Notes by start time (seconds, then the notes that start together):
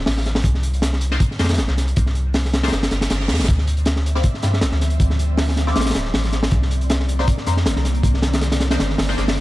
Already playing: C4 E4 F4 D5
0.06 A1, snare, open hi-hat
0.17 snare
0.25 snare, closed hi-hat
0.35 snare, open hi-hat
0.44 C2, kick, closed hi-hat
0.54 snare
0.63 closed hi-hat
0.74 closed hi-hat
0.82 snare, closed hi-hat
0.93 snare
1.01 closed hi-hat
1.11 A#3 D4 D#4 C5, snare
1.20 kick, closed hi-hat
1.31 snare
1.39 F2 A#3 D4 D#4 C5, snare, closed hi-hat
1.44 snare, closed hi-hat
1.49 snare, closed hi-hat
1.53 snare, closed hi-hat
1.58 G1, snare, closed hi-hat
1.68 C2, snare
1.77 snare, closed hi-hat
1.88 closed hi-hat
1.96 C2, kick, closed hi-hat
2.06 snare
2.15 closed hi-hat
2.34 snare, open hi-hat
2.45 snare
2.53 snare, closed hi-hat
2.63 A#3 D4 D#4 C5, snare, closed hi-hat
2.68 snare, closed hi-hat
2.72 G1, snare, closed hi-hat, reverse cymbal
2.83 snare, closed hi-hat
2.91 G1, snare, closed hi-hat
3.01 snare, closed hi-hat
3.10 G1, snare, closed hi-hat
3.20 snare
3.28 F2, snare, closed hi-hat
3.34 snare, closed hi-hat
3.40 G1, snare, closed hi-hat
3.44 snare, closed hi-hat
3.48 D2 F3 C4 D5 E5, kick, closed hi-hat
3.58 snare
3.67 closed hi-hat
3.77 closed hi-hat
3.85 snare, closed hi-hat
3.96 snare
4.06 closed hi-hat
4.15 C4 E4 F4 D5, snare
4.23 kick, closed hi-hat
4.34 snare
4.42 G2 C4 E4 F4 D5, snare, closed hi-hat
4.53 snare
4.61 A1, snare, closed hi-hat
4.72 D2, snare
4.81 snare, closed hi-hat
4.90 closed hi-hat
5.00 D2, kick, closed hi-hat
5.10 snare
5.19 closed hi-hat
5.37 snare, open hi-hat
5.48 snare
5.57 snare, closed hi-hat
5.67 C4 E4 F4 D5, snare
5.75 A1, snare, closed hi-hat
5.81 snare, closed hi-hat
5.86 snare, closed hi-hat
5.90 snare, closed hi-hat
5.95 D1, snare, closed hi-hat
6.05 snare
6.14 A1, snare, open hi-hat
6.24 snare
6.32 snare, closed hi-hat
6.43 snare, open hi-hat
6.51 C2 D#3 A#3 C4, kick, closed hi-hat
6.62 snare
6.71 closed hi-hat
6.81 closed hi-hat
6.90 snare, closed hi-hat
7.00 snare
7.09 closed hi-hat
7.19 A#3 D4 D#4 C5, snare
7.28 kick, closed hi-hat
7.37 snare
7.46 F2 A#3 D4 D#4 C5, snare, closed hi-hat
7.57 snare
7.65 G1, snare, closed hi-hat
7.76 C2, snare
7.85 snare, closed hi-hat
7.95 closed hi-hat
8.03 C2, kick, closed hi-hat
8.14 snare
8.22 snare, closed hi-hat
8.33 snare, closed hi-hat
8.41 snare, closed hi-hat
8.52 snare, closed hi-hat
8.60 snare, closed hi-hat
8.71 A#3 D4 D#4 C5, snare, closed hi-hat
8.79 G1, snare, closed hi-hat
8.90 snare
8.98 G1, snare, open hi-hat
9.09 A#3 D4 D#4 C5, snare
9.18 G1 A#3 D4 D#4 C5, snare, closed hi-hat
9.28 snare, open hi-hat
9.36 snare